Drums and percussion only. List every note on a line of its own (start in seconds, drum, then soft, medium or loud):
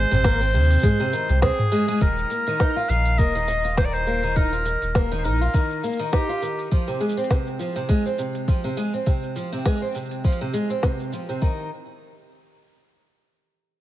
0.12 mid tom medium
0.12 open hi-hat soft
0.12 shaker soft
0.14 mid tom medium
0.14 mid tom soft
0.14 shaker soft
0.18 mid tom soft
0.18 shaker soft
0.22 kick loud
0.22 snare loud
0.22 mid tom soft
0.22 open hi-hat medium
0.22 shaker soft
0.33 shaker soft
0.37 shaker soft
0.41 shaker soft
0.54 open hi-hat soft
0.54 shaker soft
0.60 shaker soft
0.64 shaker soft
0.71 open hi-hat soft
0.71 shaker medium
0.74 shaker medium
0.79 shaker medium
0.83 kick loud
0.83 mid tom medium
0.83 open hi-hat medium
0.83 shaker soft
1.00 shaker soft
1.13 open hi-hat soft
1.13 shaker medium
1.29 open hi-hat soft
1.29 shaker soft
1.42 kick loud
1.42 snare loud
1.42 open hi-hat medium
1.42 shaker soft
1.59 mid tom medium
1.59 shaker soft
1.72 open hi-hat soft
1.72 shaker medium
1.88 open hi-hat soft
1.88 shaker soft
2.01 kick loud
2.01 open hi-hat medium
2.01 shaker soft
2.17 shaker soft
2.30 open hi-hat soft
2.30 shaker medium
2.47 open hi-hat soft
2.47 shaker soft
2.60 kick loud
2.60 snare medium
2.60 open hi-hat medium
2.60 shaker soft
2.76 shaker soft
2.89 open hi-hat soft
2.89 shaker medium
3.05 open hi-hat soft
3.05 shaker soft
3.18 kick medium
3.18 open hi-hat medium
3.18 shaker soft
3.35 shaker soft
3.48 open hi-hat soft
3.48 shaker medium
3.65 open hi-hat soft
3.65 shaker soft
3.77 kick medium
3.77 snare loud
3.77 open hi-hat medium
3.77 shaker soft
3.94 shaker soft
4.07 open hi-hat soft
4.23 open hi-hat soft
4.23 shaker soft
4.36 kick medium
4.36 open hi-hat medium
4.36 shaker soft
4.53 shaker soft
4.66 open hi-hat soft
4.66 shaker medium
4.82 open hi-hat soft
4.82 shaker soft
4.95 kick loud
4.95 snare loud
4.95 open hi-hat medium
4.95 shaker soft
5.11 shaker soft
5.24 open hi-hat soft
5.24 shaker medium
5.41 open hi-hat soft
5.41 shaker soft
5.54 kick medium
5.54 open hi-hat medium
5.54 shaker soft
5.70 shaker soft
5.84 open hi-hat soft
5.84 shaker medium
5.86 open hi-hat soft
5.89 open hi-hat soft
5.92 open hi-hat soft
5.92 shaker soft
5.93 open hi-hat soft
5.97 open hi-hat soft
6.00 open hi-hat soft
6.13 kick medium
6.13 snare medium
6.13 open hi-hat medium
6.13 shaker soft
6.29 shaker soft
6.42 open hi-hat soft
6.42 shaker medium
6.59 open hi-hat soft
6.59 shaker soft
6.72 kick medium
6.72 open hi-hat medium
6.72 shaker soft
6.88 shaker soft
6.92 shaker soft
6.94 shaker soft
7.01 open hi-hat soft
7.05 shaker soft
7.09 open hi-hat soft
7.09 shaker medium
7.14 shaker soft
7.18 open hi-hat soft
7.18 shaker soft
7.24 open hi-hat soft
7.30 kick loud
7.30 snare medium
7.30 open hi-hat soft
7.30 shaker soft
7.47 shaker soft
7.60 open hi-hat soft
7.60 shaker medium
7.76 open hi-hat soft
7.76 shaker soft
7.89 kick medium
7.89 open hi-hat medium
7.89 shaker soft
8.05 shaker soft
8.18 open hi-hat soft
8.18 shaker medium
8.35 open hi-hat soft
8.35 shaker soft
8.48 kick medium
8.48 open hi-hat soft
8.48 shaker soft
8.64 shaker soft
8.77 open hi-hat soft
8.77 shaker medium
8.94 open hi-hat soft
8.94 shaker soft
9.06 kick medium
9.06 open hi-hat soft
9.06 shaker soft
9.23 shaker soft
9.36 open hi-hat soft
9.36 shaker medium
9.52 open hi-hat soft
9.52 shaker soft
9.56 open hi-hat soft
9.59 open hi-hat soft
9.62 snare medium
9.62 open hi-hat soft
9.66 kick medium
9.66 open hi-hat soft
9.66 shaker soft
9.70 open hi-hat soft
9.74 open hi-hat soft
9.78 open hi-hat soft
9.82 shaker soft
9.85 shaker soft
9.91 shaker soft
9.95 open hi-hat soft
9.95 shaker medium
10.05 shaker soft
10.11 open hi-hat soft
10.11 shaker soft
10.24 kick medium
10.24 shaker soft
10.32 open hi-hat soft
10.41 shaker soft
10.54 open hi-hat soft
10.54 shaker medium
10.70 open hi-hat soft
10.83 kick medium
10.83 snare medium
10.83 open hi-hat soft
10.83 shaker soft
11.00 shaker soft
11.13 open hi-hat soft
11.13 shaker medium
11.29 shaker soft
11.42 kick medium